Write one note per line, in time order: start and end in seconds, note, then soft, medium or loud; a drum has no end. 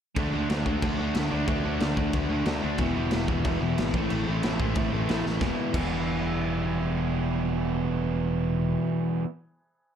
0.16 0.30 D2 medium
0.16 0.34 D3 loud
0.16 0.33 A3 loud
0.16 0.33 D4 loud
0.16 0.32 F#4 loud
0.16 kick loud
0.16 crash medium
0.33 0.47 D2 medium
0.33 0.48 D3 medium
0.33 0.49 A3 medium
0.33 0.50 D4 medium
0.33 0.50 F#4 medium
0.49 0.63 D2 medium
0.49 0.67 D3 medium
0.49 0.67 A3 medium
0.49 0.66 D4 medium
0.49 0.66 F#4 loud
0.49 snare loud
0.49 crash medium
0.66 0.79 D2 loud
0.66 0.81 D3 medium
0.66 0.81 A3 medium
0.66 0.82 D4 medium
0.66 0.82 F#4 medium
0.66 kick medium
0.82 0.96 D2 medium
0.82 0.99 D3 medium
0.82 0.99 A3 medium
0.82 0.98 D4 loud
0.82 0.97 F#4 loud
0.82 kick loud
0.82 crash medium
0.98 1.12 D2 medium
0.98 1.14 D3 medium
0.98 1.15 A3 medium
0.98 1.15 D4 medium
0.98 1.15 F#4 loud
1.15 1.28 D2 medium
1.15 1.31 D3 medium
1.15 1.31 A3 medium
1.15 1.30 D4 medium
1.15 1.29 F#4 loud
1.15 snare loud
1.15 crash medium
1.30 1.45 D2 medium
1.30 1.46 D3 medium
1.30 1.47 A3 medium
1.30 1.48 D4 loud
1.30 1.48 F#4 loud
1.47 1.61 D2 medium
1.47 1.65 D3 loud
1.47 1.65 A3 loud
1.47 1.63 D4 loud
1.47 1.64 F#4 loud
1.47 kick loud
1.47 crash medium
1.65 1.79 D2 medium
1.65 1.79 D3 medium
1.65 1.79 A3 medium
1.65 1.80 D4 medium
1.65 1.80 F#4 loud
1.80 1.94 D2 medium
1.80 1.97 D3 loud
1.80 1.97 A3 medium
1.80 1.97 D4 loud
1.80 1.96 F#4 loud
1.80 snare loud
1.80 crash medium
1.97 2.11 D2 medium
1.97 2.13 D3 medium
1.97 2.14 A3 medium
1.97 2.14 D4 medium
1.97 2.14 F#4 loud
1.97 kick loud
2.13 2.27 D2 medium
2.13 2.31 D3 medium
2.13 2.30 A3 medium
2.13 2.30 D4 loud
2.13 2.29 F#4 loud
2.13 kick loud
2.13 crash medium
2.30 2.43 D2 medium
2.30 2.46 D3 medium
2.30 2.46 A3 medium
2.30 2.46 D4 medium
2.30 2.47 F#4 medium
2.45 2.59 D2 medium
2.45 2.64 D3 medium
2.45 2.64 A3 medium
2.45 2.63 D4 medium
2.45 2.63 F#4 loud
2.45 snare loud
2.45 crash medium
2.64 2.77 D2 medium
2.64 2.79 D3 medium
2.64 2.79 A3 medium
2.64 2.79 D4 medium
2.64 2.79 F#4 loud
2.78 2.92 E1 medium
2.78 2.96 E2 loud
2.78 2.95 B2 loud
2.78 2.96 E3 loud
2.78 2.96 G3 loud
2.78 2.95 B3 loud
2.78 2.95 E4 loud
2.78 kick loud
2.78 crash medium
2.95 3.10 E1 medium
2.95 3.11 E2 medium
2.95 3.12 B2 medium
2.95 3.11 E3 medium
2.95 3.11 G3 medium
2.95 3.12 B3 medium
2.95 3.13 E4 loud
3.11 3.26 E1 medium
3.11 3.29 E2 medium
3.11 3.29 B2 medium
3.11 3.30 E3 medium
3.11 3.28 G3 medium
3.11 3.28 B3 loud
3.11 3.28 E4 loud
3.11 snare loud
3.11 crash medium
3.28 3.42 E1 loud
3.28 3.44 E2 medium
3.28 3.45 B2 medium
3.28 3.44 E3 medium
3.28 3.44 G3 medium
3.28 3.45 B3 medium
3.28 3.46 E4 loud
3.28 kick medium
3.44 3.58 E1 medium
3.44 3.62 E2 loud
3.44 3.61 B2 loud
3.44 3.61 E3 medium
3.44 3.60 G3 medium
3.44 3.60 B3 loud
3.44 3.60 E4 loud
3.44 kick loud
3.44 crash medium
3.60 3.75 E1 medium
3.60 3.77 E2 medium
3.60 3.78 B2 medium
3.60 3.77 E3 medium
3.60 3.77 G3 medium
3.60 3.77 B3 medium
3.60 3.79 E4 medium
3.78 3.91 G#1 medium
3.78 3.94 E2 medium
3.78 3.94 B2 loud
3.78 3.94 E3 medium
3.78 3.94 G3 medium
3.78 3.94 B3 medium
3.78 3.96 E4 medium
3.78 snare loud
3.78 crash medium
3.94 4.07 A1 medium
3.94 4.10 A2 loud
3.94 4.10 E3 loud
3.94 4.10 A3 loud
3.94 4.09 C4 loud
3.94 4.09 E4 loud
3.94 kick loud
4.10 4.24 A1 loud
4.10 4.26 A2 medium
4.10 4.27 E3 loud
4.10 4.27 A3 loud
4.10 4.28 C4 loud
4.10 4.28 E4 loud
4.10 crash medium
4.27 4.41 A1 loud
4.27 4.44 A2 medium
4.27 4.44 E3 medium
4.27 4.43 A3 medium
4.27 4.43 C4 medium
4.27 4.42 E4 loud
4.43 4.57 A1 medium
4.43 4.59 A2 medium
4.43 4.59 E3 medium
4.43 4.60 A3 medium
4.43 4.60 C4 loud
4.43 4.61 E4 loud
4.43 snare loud
4.43 crash medium
4.60 4.73 A1 medium
4.60 4.77 A2 medium
4.60 4.77 E3 medium
4.60 4.76 A3 medium
4.60 4.76 C4 loud
4.60 4.76 E4 medium
4.60 kick medium
4.75 4.89 A1 loud
4.75 4.91 A2 medium
4.75 4.92 E3 medium
4.75 4.92 A3 medium
4.75 4.92 C4 medium
4.75 4.93 E4 loud
4.75 kick loud
4.75 crash medium
4.92 5.06 A1 medium
4.92 5.10 A2 medium
4.92 5.10 E3 medium
4.92 5.09 A3 medium
4.92 5.09 C4 medium
4.92 5.09 E4 medium
5.07 5.22 A1 medium
5.07 5.24 A2 medium
5.07 5.25 A3 medium
5.07 5.26 C4 medium
5.07 5.26 E4 medium
5.07 snare loud
5.07 crash medium
5.11 5.24 A2 medium
5.11 5.25 E3 medium
5.25 5.38 A1 medium
5.25 5.41 A2 loud
5.25 5.40 E3 medium
5.25 5.41 A3 medium
5.25 5.42 C4 medium
5.25 5.42 E4 medium
5.25 snare medium
5.41 5.51 E1 medium
5.41 5.73 E2 loud
5.41 5.75 B2 loud
5.41 5.73 E3 loud
5.41 5.75 G3 loud
5.41 5.76 B3 loud
5.41 kick loud
5.41 snare medium
5.46 5.77 E3 loud
5.46 5.77 E4 loud
5.73 8.76 E1 medium
5.73 9.24 E2 loud
5.73 9.26 B2 loud
5.73 9.23 E3 loud
5.73 9.25 G3 loud
5.73 9.26 B3 loud
5.73 kick loud
5.73 crash medium
5.78 9.28 E4 loud